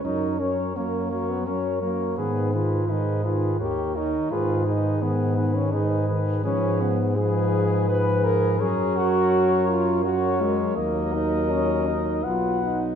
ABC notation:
X:1
M:3/4
L:1/16
Q:1/4=84
K:F#
V:1 name="Trumpet"
c2 c2 c2 c2 c2 c2 | B2 B2 B2 B2 c2 c2 | B2 B2 B2 B2 B2 B2 | _c4 c4 c4 |
c8 c4 | d8 f4 |]
V:2 name="Trumpet"
A2 A2 A2 A2 A2 A2 | G2 G2 G2 G2 A2 A2 | G2 G2 G2 G2 G2 G2 | _A4 A4 A4 |
A8 A4 | A8 B4 |]
V:3 name="French horn"
D2 C2 A,3 B, C2 A,2 | B,2 E2 D2 E2 =G2 D2 | E2 D2 B,3 C D2 z2 | C2 _C2 _A4 _c2 ^A2 |
G2 F4 E2 F2 G,2 | A,2 D2 C2 D2 E2 D2 |]
V:4 name="Euphonium" clef=bass
F,2 F,2 F,2 F,2 F,2 F,2 | D,2 D,2 D,2 D,2 D,2 D,2 | D,2 D,2 D,2 D,2 D,2 D,2 | =F,4 F,4 F,4 |
F,8 F,4 | F,8 F,4 |]
V:5 name="Bass trombone" clef=bass
F,,4 F,,4 F,,4 | G,,4 G,,4 D,,4 | G,,4 G,,4 G,,4 | _A,,12 |
F,,12 | D,,8 B,,,4 |]